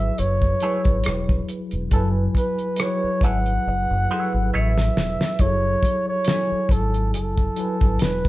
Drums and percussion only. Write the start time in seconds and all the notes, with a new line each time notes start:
0.18 closed hi-hat
0.42 kick
0.60 closed hi-hat
0.85 kick, closed hi-hat
1.04 cross-stick, closed hi-hat
1.29 kick
1.48 closed hi-hat
1.71 closed hi-hat
1.91 kick, closed hi-hat
2.35 kick, closed hi-hat
2.58 closed hi-hat
2.76 cross-stick, closed hi-hat
3.21 kick, closed hi-hat
3.46 closed hi-hat
4.78 snare
4.97 snare
5.21 snare
5.39 kick, closed hi-hat
5.83 kick, closed hi-hat
6.24 snare, closed hi-hat
6.69 kick, closed hi-hat
6.94 closed hi-hat
7.14 closed hi-hat
7.38 kick
7.56 closed hi-hat
7.81 kick, closed hi-hat
7.99 snare, closed hi-hat
8.25 kick